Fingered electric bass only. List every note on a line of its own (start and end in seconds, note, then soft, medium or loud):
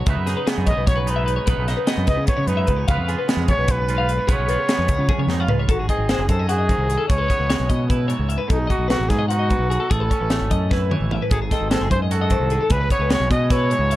0.07 0.15 C#2 loud
0.17 0.34 F#2 medium
0.58 0.68 F#2 medium
0.67 0.75 B1 medium
0.77 1.37 B1 medium
1.47 1.56 B1 loud
1.58 1.75 B1 medium
1.98 2.06 F#2 medium
2.08 2.16 C#2 medium
2.17 2.26 C#3 medium
2.38 2.46 C#3 medium
2.47 2.65 F#2 loud
2.68 2.85 C#2 medium
2.88 2.96 C#2 loud
2.97 3.14 F2 medium
3.37 3.50 F2 medium
3.48 3.57 B1 medium
3.58 4.18 B1 medium
4.28 4.37 B1 medium
4.39 4.56 B1 medium
4.79 4.87 F2 medium
4.88 4.97 C#2 loud
4.98 5.07 C#3 medium
5.18 5.27 C#3 medium
5.27 5.45 F2 medium
5.48 5.66 C#2 medium
5.68 5.86 G#1 medium
5.98 6.16 G#1 medium
6.19 6.28 F#1 medium
6.29 6.72 F#2 medium
6.78 6.96 C2 medium
7.10 7.27 C#2 medium
7.39 7.57 C#2 medium
7.60 7.68 B1 medium
7.70 8.13 B2 medium
8.19 8.37 C#2 medium
8.50 8.67 B1 medium
8.78 8.96 B1 medium
9.00 9.09 A1 medium
9.10 9.53 G#2 loud
9.59 9.77 B1 medium
9.91 10.08 A1 loud
10.21 10.38 A1 medium
10.41 10.49 G#1 medium
10.51 10.94 F#2 loud
11.01 11.18 A1 medium
11.31 11.48 G#1 loud
11.61 11.78 G#1 medium
11.81 11.90 F#1 medium
11.90 12.34 F#2 loud
12.40 12.58 C2 medium
12.70 12.88 C#2 loud
12.99 13.17 C#2 medium
13.20 13.29 B1 medium
13.30 13.74 B2 loud
13.79 13.96 C#2 loud